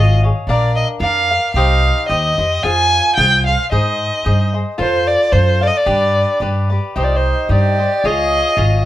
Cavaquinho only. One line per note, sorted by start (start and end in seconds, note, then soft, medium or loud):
0.00 0.23 F4 medium
0.00 0.23 G#4 medium
0.00 0.23 C#5 medium
0.00 0.22 F5 medium
0.23 0.49 G#4 soft
0.23 0.49 C#5 soft
0.23 0.48 F5 soft
0.49 1.01 D4 medium
0.49 1.01 A#4 medium
0.49 1.01 D5 medium
0.49 1.02 F5 medium
1.02 1.30 D4 soft
1.02 1.30 A#4 medium
1.02 1.30 D5 medium
1.02 1.29 F5 medium
1.31 1.56 A#4 soft
1.31 1.56 D5 soft
1.31 1.56 F5 soft
1.56 2.07 D#4 medium
1.56 2.08 G4 medium
1.56 2.09 C5 medium
1.56 2.09 D#5 medium
2.09 2.37 D#4 soft
2.09 2.38 G4 medium
2.09 2.37 C5 soft
2.09 2.36 D#5 medium
2.38 2.64 G4 soft
2.38 2.63 C5 soft
2.38 2.64 D#5 soft
2.64 3.16 F4 medium
2.64 3.17 G#4 medium
2.64 3.18 C5 medium
2.64 3.18 F5 medium
3.18 3.46 F4 medium
3.18 3.46 G#4 soft
3.18 3.46 C5 medium
3.18 3.45 F5 medium
3.46 3.71 G#4 soft
3.46 3.71 C5 soft
3.46 3.72 F5 soft
3.71 4.23 D#4 medium
3.71 4.25 G#4 medium
3.71 4.25 C5 medium
3.71 4.25 D#5 medium
4.24 4.53 D#4 medium
4.24 4.54 G#4 medium
4.24 4.53 C5 medium
4.24 4.52 D#5 medium
4.54 4.78 G#4 soft
4.54 4.77 C5 soft
4.54 4.79 D#5 soft
4.78 5.30 F4 medium
4.78 5.31 A4 medium
4.78 5.31 C5 medium
4.78 5.32 F5 medium
5.32 5.60 F4 medium
5.32 5.60 A4 medium
5.32 5.61 C5 medium
5.32 5.60 F5 medium
5.61 5.86 A4 soft
5.61 5.86 C5 soft
5.61 5.86 F5 soft
5.86 6.40 D4 medium
5.86 6.40 G4 medium
5.86 6.41 B4 medium
5.86 6.41 D5 medium
6.41 6.70 D4 soft
6.41 6.70 G4 soft
6.41 6.69 B4 medium
6.41 6.68 D5 soft
6.70 6.95 G4 soft
6.70 6.96 B4 soft
6.70 6.95 D5 soft
6.96 7.48 D#4 medium
6.96 7.49 G4 medium
6.96 7.49 C5 medium
6.96 7.50 D#5 medium
7.49 7.78 D#4 medium
7.49 7.78 G4 soft
7.49 7.78 C5 medium
7.49 7.77 D#5 medium
7.78 8.04 G4 soft
7.78 8.04 C5 soft
7.78 8.04 D#5 soft
8.05 8.55 F4 medium
8.05 8.56 G#4 medium
8.05 8.57 C#5 medium
8.05 8.57 F5 medium
8.57 8.84 F4 medium
8.57 8.85 G#4 medium
8.57 8.84 C#5 medium
8.57 8.83 F5 medium